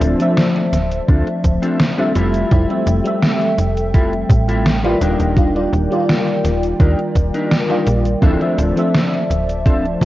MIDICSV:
0, 0, Header, 1, 7, 480
1, 0, Start_track
1, 0, Key_signature, -1, "minor"
1, 0, Tempo, 714286
1, 1691, Time_signature, 4, 2, 24, 8
1, 6754, End_track
2, 0, Start_track
2, 0, Title_t, "Ambient pad"
2, 0, Program_c, 0, 92
2, 0, Note_on_c, 0, 53, 86
2, 0, Note_on_c, 0, 72, 78
2, 0, Note_on_c, 0, 74, 80
2, 0, Note_on_c, 0, 81, 94
2, 1423, Note_off_c, 0, 74, 0
2, 1424, Note_off_c, 0, 72, 0
2, 1424, Note_off_c, 0, 81, 0
2, 1451, Note_on_c, 0, 76, 78
2, 1452, Note_on_c, 0, 69, 78
2, 1452, Note_on_c, 0, 79, 96
2, 3344, Note_off_c, 0, 53, 0
2, 3352, Note_off_c, 0, 69, 0
2, 3352, Note_off_c, 0, 76, 0
2, 3365, Note_on_c, 0, 70, 75
2, 3367, Note_on_c, 0, 74, 78
2, 3368, Note_on_c, 0, 51, 87
2, 5504, Note_off_c, 0, 79, 0
2, 5506, Note_off_c, 0, 70, 0
2, 5508, Note_off_c, 0, 51, 0
2, 5527, Note_on_c, 0, 81, 91
2, 5528, Note_on_c, 0, 53, 85
2, 5528, Note_on_c, 0, 72, 78
2, 6754, Note_off_c, 0, 53, 0
2, 6754, Note_off_c, 0, 72, 0
2, 6754, Note_off_c, 0, 74, 0
2, 6754, Note_off_c, 0, 81, 0
2, 6754, End_track
3, 0, Start_track
3, 0, Title_t, "Clean electric guitar"
3, 0, Program_c, 1, 27
3, 0, Note_on_c, 1, 60, 112
3, 0, Note_on_c, 1, 62, 102
3, 0, Note_on_c, 1, 65, 108
3, 0, Note_on_c, 1, 69, 124
3, 249, Note_off_c, 1, 60, 0
3, 249, Note_off_c, 1, 62, 0
3, 250, Note_off_c, 1, 65, 0
3, 251, Note_off_c, 1, 69, 0
3, 729, Note_on_c, 1, 60, 83
3, 730, Note_on_c, 1, 62, 74
3, 733, Note_on_c, 1, 65, 79
3, 735, Note_on_c, 1, 69, 93
3, 855, Note_off_c, 1, 60, 0
3, 855, Note_off_c, 1, 62, 0
3, 856, Note_off_c, 1, 65, 0
3, 857, Note_off_c, 1, 69, 0
3, 1091, Note_on_c, 1, 60, 85
3, 1093, Note_on_c, 1, 62, 77
3, 1094, Note_on_c, 1, 65, 77
3, 1098, Note_on_c, 1, 69, 92
3, 1209, Note_off_c, 1, 60, 0
3, 1209, Note_off_c, 1, 62, 0
3, 1210, Note_off_c, 1, 65, 0
3, 1211, Note_off_c, 1, 69, 0
3, 1331, Note_on_c, 1, 60, 88
3, 1334, Note_on_c, 1, 62, 80
3, 1335, Note_on_c, 1, 69, 96
3, 1338, Note_on_c, 1, 65, 79
3, 1442, Note_off_c, 1, 65, 0
3, 1444, Note_off_c, 1, 69, 0
3, 1445, Note_off_c, 1, 62, 0
3, 1448, Note_on_c, 1, 65, 84
3, 1449, Note_off_c, 1, 60, 0
3, 1450, Note_on_c, 1, 67, 89
3, 1451, Note_on_c, 1, 64, 95
3, 1452, Note_on_c, 1, 69, 98
3, 2219, Note_off_c, 1, 64, 0
3, 2220, Note_off_c, 1, 65, 0
3, 2220, Note_off_c, 1, 67, 0
3, 2221, Note_off_c, 1, 69, 0
3, 2649, Note_on_c, 1, 64, 85
3, 2649, Note_on_c, 1, 65, 77
3, 2650, Note_on_c, 1, 67, 76
3, 2654, Note_on_c, 1, 69, 93
3, 2775, Note_off_c, 1, 64, 0
3, 2775, Note_off_c, 1, 65, 0
3, 2776, Note_off_c, 1, 67, 0
3, 2777, Note_off_c, 1, 69, 0
3, 3013, Note_on_c, 1, 65, 81
3, 3016, Note_on_c, 1, 67, 79
3, 3017, Note_on_c, 1, 69, 93
3, 3019, Note_on_c, 1, 64, 90
3, 3130, Note_off_c, 1, 64, 0
3, 3131, Note_off_c, 1, 65, 0
3, 3131, Note_off_c, 1, 67, 0
3, 3132, Note_off_c, 1, 69, 0
3, 3257, Note_on_c, 1, 65, 83
3, 3258, Note_on_c, 1, 64, 89
3, 3259, Note_on_c, 1, 67, 80
3, 3260, Note_on_c, 1, 71, 94
3, 3366, Note_off_c, 1, 67, 0
3, 3367, Note_off_c, 1, 65, 0
3, 3370, Note_on_c, 1, 62, 92
3, 3371, Note_off_c, 1, 64, 0
3, 3372, Note_off_c, 1, 71, 0
3, 3374, Note_on_c, 1, 63, 89
3, 3374, Note_on_c, 1, 70, 105
3, 3375, Note_on_c, 1, 67, 86
3, 4141, Note_off_c, 1, 62, 0
3, 4141, Note_off_c, 1, 63, 0
3, 4142, Note_off_c, 1, 67, 0
3, 4143, Note_off_c, 1, 70, 0
3, 4567, Note_on_c, 1, 62, 86
3, 4571, Note_on_c, 1, 63, 74
3, 4572, Note_on_c, 1, 67, 79
3, 4572, Note_on_c, 1, 70, 94
3, 4695, Note_off_c, 1, 62, 0
3, 4695, Note_off_c, 1, 67, 0
3, 4696, Note_off_c, 1, 63, 0
3, 4696, Note_off_c, 1, 70, 0
3, 4933, Note_on_c, 1, 62, 86
3, 4937, Note_on_c, 1, 63, 75
3, 4938, Note_on_c, 1, 70, 90
3, 4941, Note_on_c, 1, 67, 78
3, 5050, Note_off_c, 1, 62, 0
3, 5051, Note_off_c, 1, 63, 0
3, 5051, Note_off_c, 1, 67, 0
3, 5052, Note_off_c, 1, 70, 0
3, 5169, Note_on_c, 1, 62, 84
3, 5171, Note_on_c, 1, 63, 81
3, 5175, Note_on_c, 1, 70, 95
3, 5176, Note_on_c, 1, 67, 83
3, 5288, Note_off_c, 1, 62, 0
3, 5289, Note_off_c, 1, 63, 0
3, 5290, Note_off_c, 1, 67, 0
3, 5290, Note_off_c, 1, 70, 0
3, 5526, Note_on_c, 1, 60, 118
3, 5532, Note_on_c, 1, 62, 107
3, 5532, Note_on_c, 1, 69, 126
3, 5534, Note_on_c, 1, 65, 107
3, 6010, Note_off_c, 1, 60, 0
3, 6011, Note_off_c, 1, 62, 0
3, 6011, Note_off_c, 1, 65, 0
3, 6012, Note_off_c, 1, 69, 0
3, 6488, Note_on_c, 1, 60, 82
3, 6490, Note_on_c, 1, 62, 74
3, 6490, Note_on_c, 1, 65, 77
3, 6493, Note_on_c, 1, 69, 93
3, 6615, Note_off_c, 1, 60, 0
3, 6615, Note_off_c, 1, 62, 0
3, 6616, Note_off_c, 1, 65, 0
3, 6616, Note_off_c, 1, 69, 0
3, 6754, End_track
4, 0, Start_track
4, 0, Title_t, "FM electric piano"
4, 0, Program_c, 2, 5
4, 0, Note_on_c, 2, 53, 82
4, 0, Note_on_c, 2, 57, 79
4, 0, Note_on_c, 2, 60, 74
4, 0, Note_on_c, 2, 76, 94
4, 104, Note_off_c, 2, 53, 0
4, 106, Note_off_c, 2, 57, 0
4, 108, Note_off_c, 2, 60, 0
4, 110, Note_off_c, 2, 76, 0
4, 128, Note_on_c, 2, 53, 103
4, 134, Note_on_c, 2, 57, 88
4, 141, Note_on_c, 2, 60, 90
4, 147, Note_on_c, 2, 76, 108
4, 1302, Note_off_c, 2, 53, 0
4, 1305, Note_off_c, 2, 57, 0
4, 1309, Note_off_c, 2, 60, 0
4, 1312, Note_off_c, 2, 76, 0
4, 1329, Note_on_c, 2, 55, 100
4, 1332, Note_on_c, 2, 57, 87
4, 1336, Note_on_c, 2, 60, 87
4, 1341, Note_on_c, 2, 76, 107
4, 1660, Note_off_c, 2, 55, 0
4, 1661, Note_off_c, 2, 57, 0
4, 1663, Note_off_c, 2, 60, 0
4, 1666, Note_off_c, 2, 76, 0
4, 1686, Note_on_c, 2, 55, 83
4, 1690, Note_on_c, 2, 57, 77
4, 1692, Note_on_c, 2, 60, 75
4, 1696, Note_on_c, 2, 64, 91
4, 1758, Note_off_c, 2, 55, 0
4, 1760, Note_off_c, 2, 57, 0
4, 1761, Note_off_c, 2, 60, 0
4, 1763, Note_off_c, 2, 64, 0
4, 1810, Note_on_c, 2, 55, 85
4, 1812, Note_on_c, 2, 57, 79
4, 1817, Note_on_c, 2, 60, 78
4, 1819, Note_on_c, 2, 76, 97
4, 2023, Note_off_c, 2, 55, 0
4, 2024, Note_off_c, 2, 57, 0
4, 2026, Note_off_c, 2, 60, 0
4, 2027, Note_off_c, 2, 76, 0
4, 2043, Note_on_c, 2, 55, 103
4, 2049, Note_on_c, 2, 57, 96
4, 2056, Note_on_c, 2, 60, 92
4, 2064, Note_on_c, 2, 76, 114
4, 3219, Note_off_c, 2, 55, 0
4, 3222, Note_off_c, 2, 57, 0
4, 3226, Note_off_c, 2, 60, 0
4, 3230, Note_off_c, 2, 76, 0
4, 3252, Note_on_c, 2, 55, 97
4, 3254, Note_on_c, 2, 58, 88
4, 3257, Note_on_c, 2, 74, 87
4, 3262, Note_on_c, 2, 65, 106
4, 3581, Note_off_c, 2, 55, 0
4, 3582, Note_off_c, 2, 58, 0
4, 3584, Note_off_c, 2, 74, 0
4, 3586, Note_off_c, 2, 65, 0
4, 3607, Note_on_c, 2, 55, 84
4, 3611, Note_on_c, 2, 58, 75
4, 3613, Note_on_c, 2, 62, 76
4, 3615, Note_on_c, 2, 65, 90
4, 3679, Note_off_c, 2, 55, 0
4, 3680, Note_off_c, 2, 58, 0
4, 3681, Note_off_c, 2, 62, 0
4, 3682, Note_off_c, 2, 65, 0
4, 3731, Note_on_c, 2, 55, 84
4, 3736, Note_on_c, 2, 58, 75
4, 3738, Note_on_c, 2, 74, 75
4, 3740, Note_on_c, 2, 65, 92
4, 3944, Note_off_c, 2, 55, 0
4, 3946, Note_off_c, 2, 58, 0
4, 3947, Note_off_c, 2, 74, 0
4, 3948, Note_off_c, 2, 65, 0
4, 3967, Note_on_c, 2, 55, 98
4, 3973, Note_on_c, 2, 58, 92
4, 3980, Note_on_c, 2, 74, 94
4, 3985, Note_on_c, 2, 65, 113
4, 5142, Note_off_c, 2, 55, 0
4, 5145, Note_off_c, 2, 58, 0
4, 5148, Note_off_c, 2, 74, 0
4, 5150, Note_off_c, 2, 65, 0
4, 5170, Note_on_c, 2, 55, 96
4, 5174, Note_on_c, 2, 58, 88
4, 5175, Note_on_c, 2, 74, 88
4, 5181, Note_on_c, 2, 65, 106
4, 5500, Note_off_c, 2, 55, 0
4, 5502, Note_off_c, 2, 58, 0
4, 5503, Note_off_c, 2, 74, 0
4, 5506, Note_off_c, 2, 65, 0
4, 5523, Note_on_c, 2, 53, 82
4, 5526, Note_on_c, 2, 57, 77
4, 5529, Note_on_c, 2, 60, 74
4, 5532, Note_on_c, 2, 64, 93
4, 5597, Note_off_c, 2, 53, 0
4, 5598, Note_off_c, 2, 57, 0
4, 5600, Note_off_c, 2, 60, 0
4, 5601, Note_off_c, 2, 64, 0
4, 5648, Note_on_c, 2, 53, 80
4, 5653, Note_on_c, 2, 57, 79
4, 5656, Note_on_c, 2, 60, 77
4, 5658, Note_on_c, 2, 76, 94
4, 5862, Note_off_c, 2, 53, 0
4, 5865, Note_off_c, 2, 57, 0
4, 5866, Note_off_c, 2, 60, 0
4, 5867, Note_off_c, 2, 76, 0
4, 5883, Note_on_c, 2, 53, 101
4, 5889, Note_on_c, 2, 57, 93
4, 5898, Note_on_c, 2, 60, 90
4, 5904, Note_on_c, 2, 76, 107
4, 6754, Note_off_c, 2, 53, 0
4, 6754, Note_off_c, 2, 57, 0
4, 6754, Note_off_c, 2, 60, 0
4, 6754, Note_off_c, 2, 76, 0
4, 6754, End_track
5, 0, Start_track
5, 0, Title_t, "FM bass"
5, 0, Program_c, 3, 39
5, 5, Note_on_c, 3, 26, 99
5, 108, Note_off_c, 3, 26, 0
5, 488, Note_on_c, 3, 26, 84
5, 683, Note_off_c, 3, 26, 0
5, 729, Note_on_c, 3, 38, 85
5, 830, Note_off_c, 3, 38, 0
5, 969, Note_on_c, 3, 26, 90
5, 1070, Note_off_c, 3, 26, 0
5, 1450, Note_on_c, 3, 29, 88
5, 1644, Note_off_c, 3, 29, 0
5, 1690, Note_on_c, 3, 29, 104
5, 1790, Note_off_c, 3, 29, 0
5, 1926, Note_on_c, 3, 29, 98
5, 2028, Note_off_c, 3, 29, 0
5, 2407, Note_on_c, 3, 29, 84
5, 2852, Note_off_c, 3, 29, 0
5, 2886, Note_on_c, 3, 33, 100
5, 3331, Note_off_c, 3, 33, 0
5, 3369, Note_on_c, 3, 27, 87
5, 3470, Note_off_c, 3, 27, 0
5, 3493, Note_on_c, 3, 27, 88
5, 3812, Note_off_c, 3, 27, 0
5, 3849, Note_on_c, 3, 27, 98
5, 3950, Note_off_c, 3, 27, 0
5, 4329, Note_on_c, 3, 27, 84
5, 4524, Note_off_c, 3, 27, 0
5, 4567, Note_on_c, 3, 39, 86
5, 4669, Note_off_c, 3, 39, 0
5, 4806, Note_on_c, 3, 27, 88
5, 4908, Note_off_c, 3, 27, 0
5, 5290, Note_on_c, 3, 34, 89
5, 5484, Note_off_c, 3, 34, 0
5, 5526, Note_on_c, 3, 26, 100
5, 5628, Note_off_c, 3, 26, 0
5, 5768, Note_on_c, 3, 26, 97
5, 5869, Note_off_c, 3, 26, 0
5, 6249, Note_on_c, 3, 26, 86
5, 6693, Note_off_c, 3, 26, 0
5, 6727, Note_on_c, 3, 31, 98
5, 6754, Note_off_c, 3, 31, 0
5, 6754, End_track
6, 0, Start_track
6, 0, Title_t, "Muted clean electric guitar strokes"
6, 969, Note_on_c, 9, 29, 32
6, 1037, Note_off_c, 9, 29, 0
6, 2890, Note_on_c, 9, 29, 34
6, 2957, Note_off_c, 9, 29, 0
6, 4808, Note_on_c, 9, 29, 32
6, 4875, Note_off_c, 9, 29, 0
6, 5415, Note_on_c, 9, 29, 33
6, 5482, Note_off_c, 9, 29, 0
6, 6730, Note_on_c, 9, 29, 33
6, 6754, Note_off_c, 9, 29, 0
6, 6754, End_track
7, 0, Start_track
7, 0, Title_t, "Drums"
7, 10, Note_on_c, 9, 42, 98
7, 10, Note_on_c, 9, 69, 67
7, 77, Note_off_c, 9, 42, 0
7, 77, Note_off_c, 9, 69, 0
7, 134, Note_on_c, 9, 42, 60
7, 134, Note_on_c, 9, 69, 39
7, 201, Note_off_c, 9, 42, 0
7, 201, Note_off_c, 9, 69, 0
7, 250, Note_on_c, 9, 38, 121
7, 250, Note_on_c, 9, 42, 58
7, 250, Note_on_c, 9, 69, 29
7, 317, Note_off_c, 9, 38, 0
7, 317, Note_off_c, 9, 42, 0
7, 317, Note_off_c, 9, 69, 0
7, 376, Note_on_c, 9, 42, 29
7, 443, Note_off_c, 9, 42, 0
7, 491, Note_on_c, 9, 38, 39
7, 491, Note_on_c, 9, 42, 102
7, 491, Note_on_c, 9, 69, 72
7, 558, Note_off_c, 9, 38, 0
7, 558, Note_off_c, 9, 42, 0
7, 558, Note_off_c, 9, 69, 0
7, 615, Note_on_c, 9, 42, 56
7, 615, Note_on_c, 9, 69, 38
7, 682, Note_off_c, 9, 42, 0
7, 682, Note_off_c, 9, 69, 0
7, 729, Note_on_c, 9, 36, 127
7, 731, Note_on_c, 9, 42, 54
7, 731, Note_on_c, 9, 69, 28
7, 797, Note_off_c, 9, 36, 0
7, 798, Note_off_c, 9, 42, 0
7, 798, Note_off_c, 9, 69, 0
7, 855, Note_on_c, 9, 42, 27
7, 922, Note_off_c, 9, 42, 0
7, 970, Note_on_c, 9, 36, 63
7, 971, Note_on_c, 9, 42, 98
7, 971, Note_on_c, 9, 69, 62
7, 1037, Note_off_c, 9, 36, 0
7, 1038, Note_off_c, 9, 42, 0
7, 1038, Note_off_c, 9, 69, 0
7, 1095, Note_on_c, 9, 42, 56
7, 1095, Note_on_c, 9, 69, 38
7, 1162, Note_off_c, 9, 42, 0
7, 1162, Note_off_c, 9, 69, 0
7, 1209, Note_on_c, 9, 38, 127
7, 1209, Note_on_c, 9, 42, 58
7, 1209, Note_on_c, 9, 69, 29
7, 1276, Note_off_c, 9, 38, 0
7, 1276, Note_off_c, 9, 42, 0
7, 1276, Note_off_c, 9, 69, 0
7, 1334, Note_on_c, 9, 42, 28
7, 1401, Note_off_c, 9, 42, 0
7, 1448, Note_on_c, 9, 42, 94
7, 1448, Note_on_c, 9, 69, 66
7, 1515, Note_off_c, 9, 42, 0
7, 1515, Note_off_c, 9, 69, 0
7, 1573, Note_on_c, 9, 42, 55
7, 1573, Note_on_c, 9, 69, 37
7, 1640, Note_off_c, 9, 42, 0
7, 1640, Note_off_c, 9, 69, 0
7, 1689, Note_on_c, 9, 42, 53
7, 1689, Note_on_c, 9, 69, 28
7, 1690, Note_on_c, 9, 36, 127
7, 1756, Note_off_c, 9, 42, 0
7, 1756, Note_off_c, 9, 69, 0
7, 1757, Note_off_c, 9, 36, 0
7, 1815, Note_on_c, 9, 42, 27
7, 1882, Note_off_c, 9, 42, 0
7, 1928, Note_on_c, 9, 42, 101
7, 1928, Note_on_c, 9, 69, 66
7, 1995, Note_off_c, 9, 42, 0
7, 1995, Note_off_c, 9, 69, 0
7, 2054, Note_on_c, 9, 42, 57
7, 2054, Note_on_c, 9, 69, 37
7, 2121, Note_off_c, 9, 42, 0
7, 2121, Note_off_c, 9, 69, 0
7, 2167, Note_on_c, 9, 38, 126
7, 2167, Note_on_c, 9, 42, 54
7, 2167, Note_on_c, 9, 69, 28
7, 2235, Note_off_c, 9, 38, 0
7, 2235, Note_off_c, 9, 42, 0
7, 2235, Note_off_c, 9, 69, 0
7, 2295, Note_on_c, 9, 42, 27
7, 2362, Note_off_c, 9, 42, 0
7, 2409, Note_on_c, 9, 42, 100
7, 2409, Note_on_c, 9, 69, 67
7, 2476, Note_off_c, 9, 42, 0
7, 2476, Note_off_c, 9, 69, 0
7, 2535, Note_on_c, 9, 42, 54
7, 2535, Note_on_c, 9, 69, 36
7, 2602, Note_off_c, 9, 42, 0
7, 2602, Note_off_c, 9, 69, 0
7, 2650, Note_on_c, 9, 36, 127
7, 2652, Note_on_c, 9, 42, 57
7, 2652, Note_on_c, 9, 69, 26
7, 2717, Note_off_c, 9, 36, 0
7, 2719, Note_off_c, 9, 42, 0
7, 2719, Note_off_c, 9, 69, 0
7, 2777, Note_on_c, 9, 42, 27
7, 2844, Note_off_c, 9, 42, 0
7, 2888, Note_on_c, 9, 36, 110
7, 2893, Note_on_c, 9, 42, 91
7, 2893, Note_on_c, 9, 69, 62
7, 2956, Note_off_c, 9, 36, 0
7, 2960, Note_off_c, 9, 42, 0
7, 2960, Note_off_c, 9, 69, 0
7, 3018, Note_on_c, 9, 42, 54
7, 3018, Note_on_c, 9, 69, 36
7, 3085, Note_off_c, 9, 42, 0
7, 3085, Note_off_c, 9, 69, 0
7, 3133, Note_on_c, 9, 38, 126
7, 3133, Note_on_c, 9, 42, 57
7, 3133, Note_on_c, 9, 69, 28
7, 3200, Note_off_c, 9, 38, 0
7, 3200, Note_off_c, 9, 42, 0
7, 3200, Note_off_c, 9, 69, 0
7, 3258, Note_on_c, 9, 42, 27
7, 3325, Note_off_c, 9, 42, 0
7, 3371, Note_on_c, 9, 42, 95
7, 3371, Note_on_c, 9, 69, 65
7, 3439, Note_off_c, 9, 42, 0
7, 3439, Note_off_c, 9, 69, 0
7, 3494, Note_on_c, 9, 42, 55
7, 3494, Note_on_c, 9, 69, 38
7, 3562, Note_off_c, 9, 42, 0
7, 3562, Note_off_c, 9, 69, 0
7, 3608, Note_on_c, 9, 36, 127
7, 3612, Note_on_c, 9, 42, 53
7, 3612, Note_on_c, 9, 69, 27
7, 3675, Note_off_c, 9, 36, 0
7, 3679, Note_off_c, 9, 42, 0
7, 3679, Note_off_c, 9, 69, 0
7, 3737, Note_on_c, 9, 42, 25
7, 3804, Note_off_c, 9, 42, 0
7, 3852, Note_on_c, 9, 42, 93
7, 3852, Note_on_c, 9, 69, 63
7, 3920, Note_off_c, 9, 42, 0
7, 3920, Note_off_c, 9, 69, 0
7, 3977, Note_on_c, 9, 42, 54
7, 3977, Note_on_c, 9, 69, 38
7, 4045, Note_off_c, 9, 42, 0
7, 4045, Note_off_c, 9, 69, 0
7, 4094, Note_on_c, 9, 38, 125
7, 4094, Note_on_c, 9, 42, 52
7, 4094, Note_on_c, 9, 69, 26
7, 4161, Note_off_c, 9, 38, 0
7, 4161, Note_off_c, 9, 42, 0
7, 4161, Note_off_c, 9, 69, 0
7, 4216, Note_on_c, 9, 42, 26
7, 4284, Note_off_c, 9, 42, 0
7, 4331, Note_on_c, 9, 38, 38
7, 4331, Note_on_c, 9, 42, 97
7, 4331, Note_on_c, 9, 69, 64
7, 4398, Note_off_c, 9, 38, 0
7, 4398, Note_off_c, 9, 42, 0
7, 4398, Note_off_c, 9, 69, 0
7, 4455, Note_on_c, 9, 42, 54
7, 4455, Note_on_c, 9, 69, 35
7, 4523, Note_off_c, 9, 42, 0
7, 4523, Note_off_c, 9, 69, 0
7, 4567, Note_on_c, 9, 36, 122
7, 4569, Note_on_c, 9, 42, 53
7, 4569, Note_on_c, 9, 69, 26
7, 4634, Note_off_c, 9, 36, 0
7, 4636, Note_off_c, 9, 42, 0
7, 4636, Note_off_c, 9, 69, 0
7, 4695, Note_on_c, 9, 42, 26
7, 4762, Note_off_c, 9, 42, 0
7, 4807, Note_on_c, 9, 36, 66
7, 4808, Note_on_c, 9, 42, 89
7, 4808, Note_on_c, 9, 69, 59
7, 4874, Note_off_c, 9, 36, 0
7, 4875, Note_off_c, 9, 42, 0
7, 4875, Note_off_c, 9, 69, 0
7, 4935, Note_on_c, 9, 42, 53
7, 4935, Note_on_c, 9, 69, 36
7, 5002, Note_off_c, 9, 42, 0
7, 5002, Note_off_c, 9, 69, 0
7, 5050, Note_on_c, 9, 38, 127
7, 5050, Note_on_c, 9, 42, 52
7, 5050, Note_on_c, 9, 69, 27
7, 5117, Note_off_c, 9, 38, 0
7, 5117, Note_off_c, 9, 42, 0
7, 5117, Note_off_c, 9, 69, 0
7, 5175, Note_on_c, 9, 42, 26
7, 5243, Note_off_c, 9, 42, 0
7, 5289, Note_on_c, 9, 42, 89
7, 5289, Note_on_c, 9, 69, 63
7, 5356, Note_off_c, 9, 42, 0
7, 5356, Note_off_c, 9, 69, 0
7, 5415, Note_on_c, 9, 42, 51
7, 5415, Note_on_c, 9, 69, 35
7, 5482, Note_off_c, 9, 42, 0
7, 5482, Note_off_c, 9, 69, 0
7, 5527, Note_on_c, 9, 36, 125
7, 5529, Note_on_c, 9, 42, 52
7, 5529, Note_on_c, 9, 69, 27
7, 5594, Note_off_c, 9, 36, 0
7, 5596, Note_off_c, 9, 42, 0
7, 5596, Note_off_c, 9, 69, 0
7, 5653, Note_on_c, 9, 42, 24
7, 5720, Note_off_c, 9, 42, 0
7, 5769, Note_on_c, 9, 42, 90
7, 5769, Note_on_c, 9, 69, 63
7, 5836, Note_off_c, 9, 42, 0
7, 5836, Note_off_c, 9, 69, 0
7, 5894, Note_on_c, 9, 42, 54
7, 5894, Note_on_c, 9, 69, 35
7, 5961, Note_off_c, 9, 42, 0
7, 5961, Note_off_c, 9, 69, 0
7, 6010, Note_on_c, 9, 38, 122
7, 6010, Note_on_c, 9, 42, 51
7, 6010, Note_on_c, 9, 69, 27
7, 6077, Note_off_c, 9, 38, 0
7, 6077, Note_off_c, 9, 42, 0
7, 6077, Note_off_c, 9, 69, 0
7, 6138, Note_on_c, 9, 42, 26
7, 6205, Note_off_c, 9, 42, 0
7, 6253, Note_on_c, 9, 42, 94
7, 6253, Note_on_c, 9, 69, 64
7, 6320, Note_off_c, 9, 42, 0
7, 6320, Note_off_c, 9, 69, 0
7, 6377, Note_on_c, 9, 42, 52
7, 6377, Note_on_c, 9, 69, 37
7, 6444, Note_off_c, 9, 42, 0
7, 6444, Note_off_c, 9, 69, 0
7, 6488, Note_on_c, 9, 36, 120
7, 6493, Note_on_c, 9, 42, 51
7, 6493, Note_on_c, 9, 69, 27
7, 6555, Note_off_c, 9, 36, 0
7, 6560, Note_off_c, 9, 42, 0
7, 6560, Note_off_c, 9, 69, 0
7, 6621, Note_on_c, 9, 42, 24
7, 6688, Note_off_c, 9, 42, 0
7, 6728, Note_on_c, 9, 36, 105
7, 6754, Note_off_c, 9, 36, 0
7, 6754, End_track
0, 0, End_of_file